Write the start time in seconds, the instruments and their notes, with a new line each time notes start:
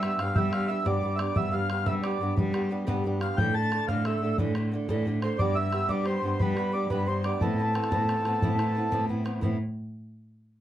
Already playing: cello G3, accordion E5, tin whistle E6
0.02 steel-string acoustic guitar G3 B3 D4 G4, bodhran
0.19 cello G2, steel-string acoustic guitar G3 B3 D4 G4, accordion F5, bodhran
0.35 steel-string acoustic guitar G3 B3 D4 G4, cello G3, accordion E5, tin whistle G6, bodhran
0.40 tin whistle E6
0.52 steel-string acoustic guitar G3 B3 D4 G4, accordion F5, bodhran
0.68 steel-string acoustic guitar G3 B3 D4 G4, accordion E5, tin whistle E6
0.85 cello G2, steel-string acoustic guitar G3 B3 D4 G4, accordion D5, tin whistle E6, bodhran
0.90 tin whistle D6
1.02 steel-string acoustic guitar G3 B3 D4 G4, bodhran
1.16 steel-string acoustic guitar G3 B3, accordion D5 E5, bodhran
1.21 steel-string acoustic guitar D4 G4, tin whistle D6
1.34 cello G2, steel-string acoustic guitar G3 B3 D4 G4, accordion E5, tin whistle E6, bodhran
1.51 steel-string acoustic guitar G3 B3 D4 G4, accordion F5, tin whistle F6, bodhran
1.70 steel-string acoustic guitar G3 B3 D4 G4, bodhran
1.86 steel-string acoustic guitar G3 B3 D4 G4, cello G3, accordion E5, tin whistle E6, bodhran
2.02 steel-string acoustic guitar G3 B3 D4 G4, accordion D5, tin whistle E6, bodhran
2.07 tin whistle D6
2.20 cello G2, steel-string acoustic guitar G3 B3 D4 G4
2.36 steel-string acoustic guitar G3 B3 D4 G4, cello G3, bodhran
2.53 steel-string acoustic guitar G3 B3 D4 G4, bodhran
2.69 steel-string acoustic guitar G3 B3 D4 G4
2.87 cello G2, steel-string acoustic guitar G3 B3 D4 G4, bodhran
3.04 steel-string acoustic guitar G3 B3 D4 G4, bodhran
3.20 steel-string acoustic guitar G3 B3 D4 G4, accordion F5, tin whistle F6, bodhran
3.37 steel-string acoustic guitar A2 D3 E3 A3 D4 A4, cello A2, accordion G5, tin whistle G6, bodhran
3.54 steel-string acoustic guitar D3 A3 D4 A4, accordion A5, tin whistle A6, bodhran
3.71 steel-string acoustic guitar D3 A3 D4 A4, bodhran
3.88 steel-string acoustic guitar A2 D3 E3 A3 D4 A4, cello A2, accordion F5, tin whistle F6, bodhran
4.05 steel-string acoustic guitar D3 A3 D4 A4, accordion E5, tin whistle E6, bodhran
4.22 cello A2, steel-string acoustic guitar D3 A3 D4 A4
4.38 steel-string acoustic guitar A2 D3 E3 A3 D4 A4, cello A2, bodhran
4.55 steel-string acoustic guitar D3 A3 D4 A4, bodhran
4.72 steel-string acoustic guitar D3 A3 D4 A4
4.88 steel-string acoustic guitar A2 D3 E3 A3 D4 A4, cello A2, bodhran
5.05 steel-string acoustic guitar D3 A3 D4 A4, bodhran
5.22 steel-string acoustic guitar D3 A3 D4 A4, accordion C5, tin whistle C6, bodhran
5.39 cello G2, steel-string acoustic guitar G3 B3 D4 G4, accordion D5, tin whistle D6, bodhran
5.55 steel-string acoustic guitar G3 B3 D4 G4, accordion E5, tin whistle E6, bodhran
5.72 steel-string acoustic guitar G3 B3 D4 G4, bodhran
5.88 steel-string acoustic guitar G3 B3 D4 G4, cello G3, accordion D5, tin whistle D6, bodhran
6.05 steel-string acoustic guitar G3 B3 D4 G4, accordion C5, tin whistle C6, bodhran
6.22 cello G2, steel-string acoustic guitar G3 B3 D4 G4
6.39 steel-string acoustic guitar G3 B3 D4 G4, cello G3, accordion B4, tin whistle B5, bodhran
6.56 steel-string acoustic guitar G3 B3 D4 G4, accordion B4, tin whistle B5, bodhran
6.72 steel-string acoustic guitar G3 B3 D4 G4, accordion D5, tin whistle D6
6.90 cello G2, steel-string acoustic guitar G3 B3 D4 G4, accordion B4, tin whistle B5, bodhran
7.06 steel-string acoustic guitar G3 B3 D4 G4, accordion C5, tin whistle C6, bodhran
7.24 steel-string acoustic guitar G3 B3 D4 G4, accordion D5, bodhran
7.34 tin whistle G5
7.41 steel-string acoustic guitar A2 E3 B3 C4 E4, cello A2, accordion A4, tin whistle A5, bodhran
7.58 steel-string acoustic guitar E3 B3 C4 E4, tin whistle B5, bodhran
7.63 tin whistle A5
7.74 steel-string acoustic guitar E3 B3 C4 E4, tin whistle G5, bodhran
7.80 tin whistle A5, bodhran
7.91 steel-string acoustic guitar A2 E3 B3 C4 E4, cello A2, bodhran
8.08 steel-string acoustic guitar E3 B3 C4 E4, bodhran
8.25 cello A2, steel-string acoustic guitar E3 B3 C4 E4, bodhran
8.41 cello A2, steel-string acoustic guitar A2 E3 B3 C4 E4, bodhran
8.59 steel-string acoustic guitar E3 B3 C4 E4, bodhran
8.75 steel-string acoustic guitar E3 B3 C4 E4
8.91 steel-string acoustic guitar A2 E3 B3 C4 E4, cello A2, bodhran
9.07 steel-string acoustic guitar E3 B3 C4 E4, bodhran
9.24 steel-string acoustic guitar E3 B3 C4 E4, bodhran
9.41 steel-string acoustic guitar A2 E3 B3 C4 E4, cello A2, bodhran